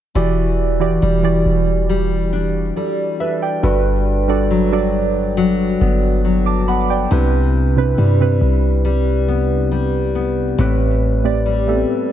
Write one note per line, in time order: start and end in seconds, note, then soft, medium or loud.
0.15 0.99 E1 loud
0.15 0.55 E3 medium
0.15 3.63 E3 medium
0.15 0.56 E4 medium
0.15 0.56 F#4 medium
0.15 0.56 G4 medium
0.15 0.56 D5 medium
0.80 1.07 E3 medium
0.80 1.07 E4 medium
0.80 1.07 F#4 medium
0.80 1.08 G4 medium
0.80 1.08 D5 medium
1.02 1.44 E1 loud
1.02 1.89 G3 medium
1.23 2.31 E3 medium
1.23 2.31 E4 medium
1.23 2.31 F#4 medium
1.23 2.32 G4 medium
1.23 2.32 D5 medium
1.46 2.72 E1 loud
1.89 2.76 G3 medium
2.33 3.20 D4 medium
2.76 4.50 G3 medium
2.76 3.18 A4 medium
2.76 3.17 D5 medium
3.20 5.81 D4 medium
3.20 3.41 B4 medium
3.20 3.40 E5 medium
3.42 3.83 D5 medium
3.42 3.83 G5 medium
3.63 5.77 G1 loud
3.63 7.11 G2 medium
3.63 4.03 G3 medium
3.63 4.03 D4 medium
3.63 4.03 F#4 medium
3.63 4.04 A4 medium
3.63 4.04 B4 medium
4.28 4.55 G3 medium
4.28 4.55 D4 medium
4.28 4.55 F#4 medium
4.28 4.56 A4 medium
4.28 4.56 D5 medium
4.51 5.36 F#3 medium
4.71 5.79 G3 medium
4.71 5.79 D4 medium
4.71 5.80 F#4 medium
4.71 5.80 A4 medium
4.71 5.80 D5 medium
5.37 6.23 F#3 medium
5.81 7.07 G1 medium
5.81 6.68 B3 medium
6.25 7.20 F#3 medium
6.46 6.67 A5 medium
6.46 6.66 D6 medium
6.68 9.28 B3 medium
6.68 6.89 F#5 medium
6.68 6.88 B5 medium
6.90 7.31 D5 medium
6.90 7.31 G5 medium
7.11 7.95 C2 loud
7.11 7.51 C3 medium
7.11 10.59 C3 medium
7.11 7.51 C4 medium
7.11 7.51 D4 medium
7.11 7.52 E4 medium
7.11 7.52 B4 medium
7.76 8.03 C3 medium
7.76 8.03 C4 medium
7.76 8.03 D4 medium
7.76 8.04 E4 medium
7.76 8.04 B4 medium
7.98 8.40 G2 loud
7.98 8.84 G3 medium
8.20 9.27 C3 medium
8.20 9.28 C4 medium
8.20 9.28 D4 medium
8.20 9.28 E4 medium
8.20 9.28 B4 medium
8.41 10.55 C2 loud
8.85 9.71 G3 medium
9.28 10.14 B3 medium
9.71 11.45 G3 medium
10.15 10.67 B3 medium
10.58 11.85 A1 loud
10.58 12.12 A2 medium
10.58 10.99 A2 medium
10.58 10.99 A3 medium
10.58 10.99 C4 medium
10.58 11.00 G4 medium
10.58 11.00 B4 medium
11.24 11.51 A2 medium
11.24 11.51 A3 medium
11.24 11.51 C4 medium
11.24 11.51 G4 medium
11.24 11.51 D5 medium
11.46 12.12 G3 medium
11.67 12.12 A2 medium
11.67 12.12 A3 medium
11.67 11.74 B3 medium
11.67 12.12 G4 medium
11.67 12.12 A4 medium
11.75 12.12 C4 medium